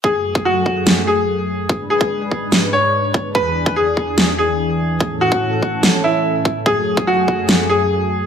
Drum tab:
SD |--------o-------|--------o-------|--------o-------|--------o-------|
BD |o--o--o---------|o--o--o-------o-|o--o--o---------|o--o--o-------o-|

SD |--------o-------|
BD |o--o--o---------|